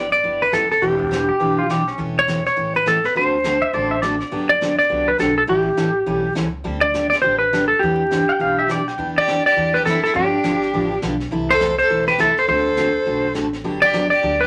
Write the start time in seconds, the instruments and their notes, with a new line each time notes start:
Already playing: upright bass G1, electric slide guitar D5
0.12 electric slide guitar D5, snare
0.23 upright bass G1, steel-string acoustic guitar G3 B3 E4 G4, brush sweep
0.42 electric slide guitar B4
0.52 upright bass F#1, steel-string acoustic guitar G3 B3 E4 G4, electric slide guitar A4, snare, hi-hat pedal
0.71 electric slide guitar A4, snare
0.82 upright bass E1, steel-string acoustic guitar E3 B3 D4 G4, electric slide guitar G4, brush sweep
1.00 kick
1.11 steel-string acoustic guitar E3 B3 D4 G4, snare, hi-hat pedal
1.29 pedal steel guitar G4
1.40 upright bass B1, steel-string acoustic guitar E3 B3 D4 G4, brush sweep
1.59 pedal steel guitar F4
1.69 steel-string acoustic guitar E3 B3 D4 G4, pedal steel guitar G4, snare, hi-hat pedal
1.87 pedal steel guitar C#4, snare
1.98 upright bass E1, steel-string acoustic guitar E3 A3 C#4 G4, brush sweep
2.19 electric slide guitar C#5
2.27 steel-string acoustic guitar E3 A3 C#4 G4, snare, hi-hat pedal
2.46 electric slide guitar C#5, snare
2.56 upright bass A1, steel-string acoustic guitar E3 A3 C#4 G4, brush sweep
2.76 electric slide guitar B4
2.86 steel-string acoustic guitar E3 A3 C#4 G4, electric slide guitar A4, snare, hi-hat pedal
3.04 electric slide guitar B4, snare
3.15 upright bass D2, steel-string acoustic guitar D3 A3 C4 F#4 A4, electric slide guitar C5, brush sweep
3.44 steel-string acoustic guitar D3 A3 C4 F#4 A4, snare, hi-hat pedal
3.62 pedal steel guitar E5
3.73 upright bass A1, steel-string acoustic guitar D3 A3 C4 F#4 A4, pedal steel guitar D5, brush sweep
3.91 pedal steel guitar E5
4.02 steel-string acoustic guitar D3 A3 C4 F#4 A4, pedal steel guitar D5, snare, hi-hat pedal
4.20 pedal steel guitar D5, snare
4.31 upright bass G1, steel-string acoustic guitar D3 F#3 B3 D4 G4, brush sweep
4.49 electric slide guitar D5
4.61 steel-string acoustic guitar D3 F#3 B3 D4 G4, snare, hi-hat pedal
4.79 electric slide guitar D5, snare
4.89 upright bass C2, steel-string acoustic guitar D3 F#3 B3 D4 G4, brush sweep
5.08 electric slide guitar B4
5.18 upright bass B1, steel-string acoustic guitar D3 F#3 B3 D4 G4, electric slide guitar A4, snare, hi-hat pedal
5.38 electric slide guitar A4
5.47 upright bass A1, steel-string acoustic guitar E3 G3 C#4 E4 A4, electric slide guitar G4, brush sweep
5.77 upright bass A1, steel-string acoustic guitar E3 G3 C#4 E4 A4, snare, hi-hat pedal
6.06 upright bass B1, steel-string acoustic guitar E3 G3 C#4 E4 A4, brush sweep
6.35 upright bass C#2, steel-string acoustic guitar E3 G3 C#4 E4 A4, snare, hi-hat pedal
6.64 upright bass D2, steel-string acoustic guitar D3 G3 C4 D4 G4, brush sweep
6.81 electric slide guitar D5
6.94 steel-string acoustic guitar D3 G3 C4 D4 G4, snare, hi-hat pedal
7.10 electric slide guitar D5, snare
7.22 upright bass A1, steel-string acoustic guitar D3 G3 C4 D4 G4, electric slide guitar C5, brush sweep
7.39 electric slide guitar B4
7.53 steel-string acoustic guitar D3 G3 C4 D4 G4, snare, hi-hat pedal
7.68 electric slide guitar A4
7.79 upright bass E2, steel-string acoustic guitar E3 B3 D4, electric slide guitar G4, brush sweep
7.83 steel-string acoustic guitar G4
8.11 steel-string acoustic guitar E3 B3 D4 G4, snare, hi-hat pedal
8.29 pedal steel guitar G5
8.39 upright bass B1, steel-string acoustic guitar E3 B3 D4 G4, pedal steel guitar F5, brush sweep
8.59 pedal steel guitar E5
8.68 steel-string acoustic guitar E3 B3 D4 G4, pedal steel guitar D5, snare, hi-hat pedal
8.88 pedal steel guitar G5, snare
8.98 upright bass E2, steel-string acoustic guitar E3 B3 D4 G4, brush sweep
9.18 fiddle G4, electric slide guitar D5
9.27 steel-string acoustic guitar E3 B3 D4 G4, snare, hi-hat pedal
9.46 fiddle G4, electric slide guitar D5
9.56 upright bass E2, steel-string acoustic guitar E3 B3 D4 G4, brush sweep
9.74 fiddle G4, electric slide guitar B4, snare
9.85 upright bass F#2, steel-string acoustic guitar E3 B3 D4 G4, fiddle E4, electric slide guitar A4, snare, hi-hat pedal
10.03 fiddle E4, electric slide guitar A4, snare
10.14 upright bass G2, steel-string acoustic guitar D3 F3 B3 D4 G4, fiddle D4, electric slide guitar G4, brush sweep
10.43 upright bass G1, steel-string acoustic guitar D3 F3 B3 D4 G4, snare, hi-hat pedal
10.62 snare
10.73 upright bass A1, steel-string acoustic guitar D3 F3 B3 D4 G4, brush sweep
11.02 upright bass B1, steel-string acoustic guitar D3 F3 B3 D4 G4, snare, hi-hat pedal
11.20 snare
11.31 upright bass C2, steel-string acoustic guitar C3 E3 A3 E4 A4, brush sweep
11.50 fiddle A4, electric slide guitar C5
11.60 steel-string acoustic guitar C3 E3 A3 E4 A4, snare, hi-hat pedal
11.78 fiddle A4, electric slide guitar C5, snare
11.90 upright bass B1, steel-string acoustic guitar C3 E3 A3 E4 A4, brush sweep
12.07 fiddle G4, electric slide guitar B4, snare
12.18 upright bass C2, steel-string acoustic guitar C3 E3 A3 E4 A4, fiddle E4, electric slide guitar A4, snare, hi-hat pedal
12.37 fiddle A4, electric slide guitar C5, snare
12.48 upright bass D2, steel-string acoustic guitar D3 A3 C4 F#4 A4, fiddle A4, electric slide guitar C5, brush sweep
12.77 steel-string acoustic guitar D3 A3 C4 F#4 A4, snare, hi-hat pedal
13.05 upright bass B1, steel-string acoustic guitar D3 A3 C4 F#4 A4, brush sweep
13.34 upright bass A1, steel-string acoustic guitar D3 A3 C4 F#4 A4, snare, hi-hat pedal
13.53 snare
13.64 upright bass G1, steel-string acoustic guitar D3 F#3 B3 D4 G4, brush sweep
13.82 fiddle G4, electric slide guitar D5
13.93 steel-string acoustic guitar D3 F#3 B3 D4 G4, snare, hi-hat pedal
14.10 fiddle G4, electric slide guitar D5, snare
14.23 upright bass D2, steel-string acoustic guitar D3 F#3 B3 D4 G4, brush sweep
14.41 fiddle G4, electric slide guitar B4